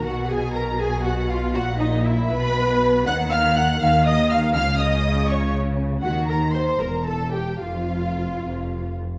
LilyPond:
<<
  \new Staff \with { instrumentName = "Violin section" } { \time 6/8 \key ees \minor \tempo 4. = 79 ges''8 aes''8 bes''8 aes''8 ges''8 f''8 | ges''8 ees''8 fes''8 ces'''4. | \key ees \dorian ges'''8 f'''8 ges'''8 f'''8 ees'''8 f'''8 | f'''8 ees'''4 des'''8 r4 |
ges''8 bes''8 c'''8 bes''8 a''8 g''8 | f''2~ f''8 r8 | }
  \new Staff \with { instrumentName = "Viola section" } { \time 6/8 \key ees \minor ges'8 aes'8 bes'8 aes'8 ges'8 f'8 | ges'8 ees'8 fes'8 ces''4. | \key ees \dorian ges''8 f''8 ges''8 f''8 ees''8 f''8 | f''8 ees''4 des''8 r4 |
ges'8 bes'8 c''8 bes'8 a'8 g'8 | f'2~ f'8 r8 | }
  \new Staff \with { instrumentName = "Violin section" } { \time 6/8 \key ees \minor ges'8 aes'8 bes'8 aes'8 ges'8 f'8 | ges'8 ees'8 fes'8 ces''4. | \key ees \dorian ges''8 f''8 ges''8 f''8 ees''8 f''8 | f''8 ees''4 des''8 r4 |
ges'8 bes'8 c''8 bes'8 a'8 g'8 | f'2~ f'8 r8 | }
  \new Staff \with { instrumentName = "Cello section" } { \clef bass \time 6/8 \key ees \minor ces2. | bes,4. ces4. | \key ees \dorian ees4. ees4. | des2. |
ees4. e,4. | f,4. f,4 r8 | }
  \new Staff \with { instrumentName = "Double bass section" } { \clef bass \time 6/8 \key ees \minor ces,2. | bes,,4. ces,4. | \key ees \dorian ees,4. ees,4. | des,2. |
ees,4. e,,4. | f,,4. f,,4 r8 | }
>>